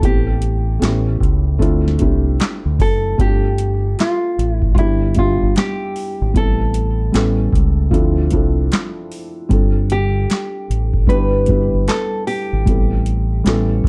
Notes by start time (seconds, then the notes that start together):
0.01 A1 A3 B3 C4 E4 G4, kick, closed hi-hat
0.05 G4
0.42 closed hi-hat
0.79 A1 A3 B3 C#4 E4 G4, closed hi-hat
0.84 snare, clap
1.20 C#2, kick, closed hi-hat
1.59 D2 A3 C4 D4 E4 F4, kick, closed hi-hat
1.88 snare
1.99 C2 A3 C4 D4 E4 G4, kick, closed hi-hat
2.40 snare, clap, closed hi-hat
2.65 D2
2.79 F#1 A4, kick, open hi-hat
3.18 G1 A3 C4 D4 F4 G4, kick, closed hi-hat
3.58 closed hi-hat
3.99 F4, snare, clap, closed hi-hat
4.39 A1, closed hi-hat
4.53 E4
4.62 kick
4.75 G1 G3 B3 D4 F4, kick, closed hi-hat
4.79 E4 G4
5.14 G3 B3 D4 E5, kick, closed hi-hat
5.19 F4 G4
5.43 G1
5.56 G4, snare, clap, closed hi-hat
5.96 open hi-hat
6.22 G#1
6.33 A1 G3 B3 C4 E4 A4, kick, closed hi-hat
6.74 closed hi-hat
7.12 A1 G3 B3 C#4 E4 A4, snare, clap, closed hi-hat
7.53 C#2, kick, closed hi-hat
7.91 D2 F3 C4 D4 E4 A4, kick, closed hi-hat
8.31 C2 F3 C4 D4 E4 A4, kick, closed hi-hat
8.72 snare, clap, closed hi-hat
9.12 open hi-hat
9.49 G1 G3 C4 D4 F4 A4, kick, closed hi-hat
9.90 G4, closed hi-hat
10.30 snare, clap, closed hi-hat
10.70 A1, closed hi-hat
10.94 kick
11.07 G1 G3 B3 D4 E4 G4 B4, kick, closed hi-hat
11.46 G3 B3 D4 E4, kick, closed hi-hat
11.51 G4
11.74 G1
11.88 A4, snare, clap, closed hi-hat
12.27 G4, open hi-hat
12.53 G#1
12.65 A1 G3 B3 C4 E4 A4, kick, closed hi-hat
13.06 closed hi-hat
13.44 A1 G3 B3 C#4 E4 A4, snare, clap, closed hi-hat
13.84 C#2, kick